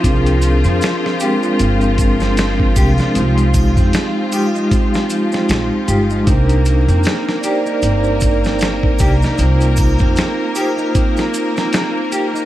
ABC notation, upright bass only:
X:1
M:4/4
L:1/16
Q:"Swing 16ths" 1/4=77
K:Cm
V:1 name="Upright bass" clef=bass
C,,3 F,, z4 G,,,6 C,, z | C,,3 F,, z8 B,,, z G,,,2 | C,,3 F,, z4 G,,,6 C,, z | C,,3 F,, z12 |]